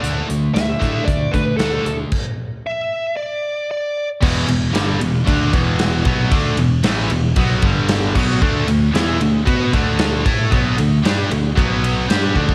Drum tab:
CC |----------------|x---------------|x---------------|--------------x-|
RD |----------------|----------------|--x-x-x-x-x-x-x-|x-x-x-x-x-x-x---|
HH |x-x-x-x-x-x-x-x-|----------------|----------------|----------------|
SD |----o-------o---|----------------|----o-------o---|----o-------o---|
BD |------o-o-o-----|o---------------|o-------o-o---o-|o-------o-o---o-|

CC |----------------|----------------|
RD |--x-x-x-x-x-x-x-|x-x-x-x-x-x-x---|
HH |----------------|----------------|
SD |----o-------o---|----o-------o---|
BD |o-------o-o---o-|o-------o-----oo|